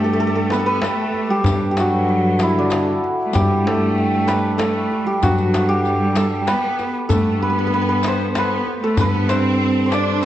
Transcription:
Already playing: tuba G2, cello section A3, santur G4 D5 E5
0.04 santur A4
0.13 santur A4
0.20 santur A4, tombak ka
0.27 santur A4
0.35 santur A4
0.50 cello section B3, santur B4, riq, tombak tek
0.59 santur A4
0.65 cello section B3, santur B4
0.82 cello section A3, santur A4, riq, tombak tek
1.14 tombak ka
1.30 cello section G3, santur G4
1.44 tuba G2, riq, tombak dum
1.61 tombak ka
1.70 cello section G3, santur G4
1.77 cello section F#3, santur F#4, riq, tombak tek
2.09 tombak ka
2.39 santur E4, riq, tombak tek
2.55 cello section D3, santur D4
2.70 riq, tombak tek
3.04 tombak ka
3.26 cello section A3
3.32 tuba G2, cello section G3, santur G4, riq, tombak dum
3.51 tombak ka
3.63 cello section A3, santur A4, tombak tek
3.98 tombak ka
4.27 santur B4, riq, tombak tek
4.58 cello section A3, santur A4, riq, tombak tek
4.92 tombak ka
5.05 cello section G3, santur G4
5.22 tuba G2, cello section F#3, santur F#4, riq, tombak dum
5.38 riq, tombak ka
5.54 riq, tombak tek
5.69 cello section G3, santur G4
5.85 riq, tombak ka
6.15 santur A4, riq, tombak tek
6.47 cello section B3, santur B4, riq, tombak tek
6.79 riq, tombak ka
7.09 tuba G2, cello section A3, santur A4, riq, tombak dum
7.27 tombak ka
7.41 cello section B3, santur B4
7.50 santur B4
7.59 santur B4
7.67 santur B4
7.73 santur B4, tombak ka
7.82 santur B4
7.89 santur B4
8.03 riq, tombak tek
8.08 santur C5
8.33 cello section B3, riq, tombak tek
8.38 santur B4
8.67 tombak ka
8.80 cello section A3, santur A4
8.95 tuba G2, cello section B3, riq, tombak dum
9.01 santur B4
9.15 tombak ka
9.26 cello section C4, santur C5, riq, tombak tek
9.62 tombak ka
9.86 santur C5
9.90 cello section D4, santur D5, riq, tombak tek
10.22 cello section C4

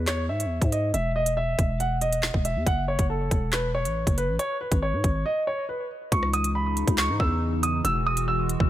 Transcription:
Already playing: 808-style bass E2
0.07 grand piano C#5, snare, clap, closed hi-hat
0.29 808-style bass G#2, grand piano E5
0.40 closed hi-hat
0.45 808-style bass E2
0.61 808-style bass G#2, kick, closed hi-hat
0.72 grand piano D#5, closed hi-hat
0.94 808-style bass E1, grand piano E5, closed hi-hat
1.16 grand piano D#5
1.26 closed hi-hat
1.37 grand piano E5
1.59 808-style bass E1, kick, closed hi-hat
1.80 grand piano F#5, closed hi-hat
2.01 grand piano D#5, closed hi-hat
2.13 closed hi-hat
2.23 snare, clap
2.34 808-style bass E1, kick
2.45 grand piano E5, closed hi-hat
2.56 808-style bass E2
2.66 808-style bass F#1, grand piano F#5, kick, closed hi-hat
2.88 grand piano C#5
2.99 808-style bass F#1, kick, closed hi-hat
3.10 grand piano A4
3.31 808-style bass E1, kick, closed hi-hat
3.53 grand piano B4, snare, clap, closed hi-hat
3.75 grand piano C#5
3.85 808-style bass A1, closed hi-hat
4.07 808-style bass F#1, kick, closed hi-hat
4.18 grand piano B4, closed hi-hat
4.28 808-style bass A1
4.39 grand piano C#5, closed hi-hat
4.61 grand piano B4
4.72 808-style bass G#1, kick, closed hi-hat
4.82 grand piano C#5
4.93 808-style bass G#2
5.04 808-style bass G#1, kick, closed hi-hat
5.26 grand piano D#5
5.47 grand piano C#5
5.69 grand piano B4
6.12 808-style bass C#2, analog synth pad C#3 E3 D#4, grand piano C#6, kick, closed hi-hat
6.23 cross-stick
6.33 grand piano D#6, closed hi-hat
6.44 closed hi-hat
6.55 grand piano B5
6.77 closed hi-hat
6.88 808-style bass C#2, kick, closed hi-hat
6.98 grand piano C#6, snare, clap
7.09 808-style bass G#2
7.20 808-style bass E2, grand piano E6, kick
7.63 grand piano D#6, closed hi-hat
7.85 808-style bass E1, analog synth pad G#3 F#4, grand piano E6, closed hi-hat
8.06 grand piano D#6
8.17 closed hi-hat
8.28 grand piano E6
8.49 closed hi-hat
8.60 808-style bass E1, kick

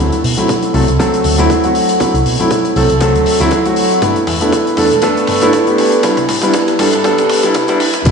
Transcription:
0.00 grand piano F#3 A3 C4 E4
0.12 closed hi-hat
0.24 picked electric bass B2, open hi-hat
0.37 grand piano F#3 A3 C4 E4, closed hi-hat
0.48 kick, closed hi-hat, mid tom
0.62 closed hi-hat
0.74 picked electric bass C2, grand piano F#3 A3 C4 A4, open hi-hat
0.88 picked electric bass C2, closed hi-hat
0.99 grand piano F#3 A3 C4 A4, kick, closed hi-hat, mid tom
1.14 closed hi-hat
1.24 picked electric bass D2, open hi-hat
1.38 picked electric bass D2, grand piano F#3 A3 C4 E4, closed hi-hat
1.50 kick, closed hi-hat, mid tom
1.63 grand piano F#3 A3 C4 F#4, closed hi-hat
1.75 open hi-hat
1.89 closed hi-hat
2.00 grand piano F#3 A3 C4 E4, muted picked electric bass stroke, kick, closed hi-hat, mid tom
2.14 picked electric bass C2, closed hi-hat
2.25 picked electric bass B2, open hi-hat
2.39 grand piano F#3 A3 C4 E4, closed hi-hat
2.51 kick, closed hi-hat, mid tom
2.65 closed hi-hat
2.76 picked electric bass C2, grand piano F#3 A3 C4 A4, open hi-hat
2.90 picked electric bass C2, closed hi-hat
3.01 grand piano F#3 A3 C4 A4, kick, closed hi-hat, mid tom
3.15 picked electric bass D2, closed hi-hat
3.26 open hi-hat
3.40 picked electric bass D2, grand piano F#3 A3 C4 E4, closed hi-hat
3.51 kick, closed hi-hat, mid tom
3.65 grand piano F#3 A3 C4 F#4, closed hi-hat
3.76 open hi-hat
3.91 closed hi-hat
4.02 picked electric bass G1, grand piano A3 B3 D4 E4, kick, closed hi-hat, mid tom
4.16 closed hi-hat
4.27 picked electric bass E2, open hi-hat, mid tom
4.41 grand piano A3 B3 D4 E4, closed hi-hat
4.52 kick, closed hi-hat, mid tom
4.67 closed hi-hat
4.77 picked electric bass E2, grand piano A3 B3 D4 A4, open hi-hat, mid tom
4.91 picked electric bass E1, closed hi-hat
5.02 grand piano A3 B3 D4 A4, kick, closed hi-hat, mid tom
5.17 closed hi-hat
5.27 picked electric bass G1, open hi-hat, mid tom
5.41 picked electric bass G1, grand piano A3 B3 D4 E4, closed hi-hat
5.53 kick, closed hi-hat, mid tom
5.67 grand piano A3 B3 D4 G4, closed hi-hat
5.78 open hi-hat, mid tom
5.92 closed hi-hat
6.03 grand piano G3 B3 D4 E4, muted picked electric bass stroke, kick, closed hi-hat, mid tom
6.17 picked electric bass C2, closed hi-hat, mid tom
6.29 picked electric bass A2, open hi-hat, mid tom
6.42 grand piano G3 B3 D4 E4, closed hi-hat, mid tom
6.54 kick, closed hi-hat, mid tom
6.68 closed hi-hat, mid tom
6.79 picked electric bass G2, grand piano G3 B3 D4 A4, open hi-hat, mid tom
6.93 picked electric bass G1, closed hi-hat, mid tom
7.04 grand piano G3 B3 D4 A4, kick, closed hi-hat, mid tom
7.18 picked electric bass C2, closed hi-hat, mid tom
7.30 open hi-hat, mid tom
7.43 picked electric bass C2, grand piano G3 B3 D4 E4, closed hi-hat, mid tom
7.54 picked electric bass C3, kick, closed hi-hat, mid tom
7.68 grand piano G3 B3 D4 E4, closed hi-hat, mid tom
7.80 open hi-hat, mid tom
7.94 closed hi-hat, mid tom
8.05 picked electric bass D2, grand piano F#3 A3 C4 E4, kick, closed hi-hat, crash, cabasa

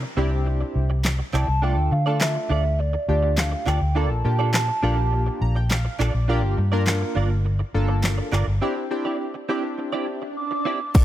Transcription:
0.02 muted clean electric guitar stroke
0.17 fingered electric bass C2, clean electric guitar C4 E4 G4 D5, synth keys C4 D4 E4 G4
0.31 muted clean electric guitar stroke
0.46 muted clean electric guitar stroke
0.61 muted clean electric guitar stroke
0.75 fingered electric bass C2
0.90 muted clean electric guitar stroke
1.05 snare, clap
1.19 muted clean electric guitar stroke
1.33 fingered electric bass C2, clean electric guitar C4 E4 G4 D5, soft synth lead A5, clap
1.48 fingered electric bass C2, muted clean electric guitar stroke
1.62 synth keys A3 D4 F4 A4, clean electric guitar D4 F4 A4 D5, soft synth lead G5
1.77 fingered electric bass D2
1.92 fingered electric bass D3, soft synth lead F5, muted clean electric guitar stroke
2.06 synth keys A3 D4 F4 A4, clean electric guitar D4 F4 A4 D5
2.21 soft synth lead E5, snare, clap
2.35 muted clean electric guitar stroke
2.50 fingered electric bass D2, clean electric guitar D4 F4 A4 D5
2.64 muted clean electric guitar stroke
2.79 soft synth lead D5, muted clean electric guitar stroke
2.93 muted clean electric guitar stroke
3.08 fingered electric bass D2, synth keys A3 D4 F4 G4, soft synth lead D5
3.23 muted clean electric guitar stroke
3.38 soft synth lead F5, snare, clap
3.52 muted clean electric guitar stroke
3.66 fingered electric bass D2, clean electric guitar D4 F4 A4 D5, soft synth lead G5, clap
3.81 fingered electric bass D2, muted clean electric guitar stroke
3.95 synth keys A#3 D4 F4 A4, clean electric guitar D4 F4 A4 D5, soft synth lead A5
4.10 fingered electric bass A#1, muted clean electric guitar stroke
4.25 fingered electric bass A#2, synth keys A#3 D4 F4 G4, muted clean electric guitar stroke
4.39 clean electric guitar D4 F4 A4 D5
4.54 snare, clap
4.68 muted clean electric guitar stroke
4.83 fingered electric bass A#1, synth keys A#3 D4 F4 G4, clean electric guitar D4 F4 A4 D5
4.97 muted clean electric guitar stroke
5.12 muted clean electric guitar stroke
5.26 muted clean electric guitar stroke
5.41 fingered electric bass A#1, synth keys A#5
5.56 synth keys G5, muted clean electric guitar stroke
5.70 synth keys F5, muted clean electric guitar stroke, snare, clap
5.85 muted clean electric guitar stroke
5.99 fingered electric bass A#1, clean electric guitar D4 F4 A4 D5, synth keys D5, clap
6.14 fingered electric bass A#1, muted clean electric guitar stroke
6.28 synth keys A#3 D4 F4 G4, clean electric guitar D4 F4 A#4 D5
6.43 fingered electric bass G1, muted clean electric guitar stroke
6.57 fingered electric bass G2, muted clean electric guitar stroke
6.72 synth keys A#3 D4 F4 A#4, clean electric guitar D4 F4 A#4 D5
6.87 snare, clap
7.01 muted clean electric guitar stroke
7.15 fingered electric bass G1, clean electric guitar D4 F4 A#4 D5
7.30 muted clean electric guitar stroke
7.45 muted clean electric guitar stroke
7.59 muted clean electric guitar stroke
7.74 fingered electric bass G1, synth keys A#3 D4 F4 A4
7.89 muted clean electric guitar stroke
8.04 snare, clap
8.18 muted clean electric guitar stroke
8.32 fingered electric bass G1, clean electric guitar D4 F4 A#4 D5, clap
8.47 fingered electric bass G1, muted clean electric guitar stroke
8.61 clean electric guitar C4 E4 G4 D5, synth keys C4 D4 E4 G4, swell
8.76 muted clean electric guitar stroke
8.91 synth keys C4 D4 E4 G4, muted clean electric guitar stroke
9.05 clean electric guitar C4 E4 G4 D5
9.34 muted clean electric guitar stroke
9.49 clean electric guitar C4 E4 G4 D5, synth keys C4 D4 E4 G4
9.64 muted clean electric guitar stroke
9.78 muted clean electric guitar stroke
9.93 clean electric guitar C4 E4 G4 D5
10.07 muted clean electric guitar stroke
10.22 muted clean electric guitar stroke
10.37 soft synth lead D6
10.51 muted clean electric guitar stroke
10.65 clean electric guitar C4 E4 G4 D5
10.80 muted clean electric guitar stroke
10.95 synth keys A3 D4 F4 A4 D5, clean electric guitar D4 F4 A4 D5, kick, crash, downlifter, shaker

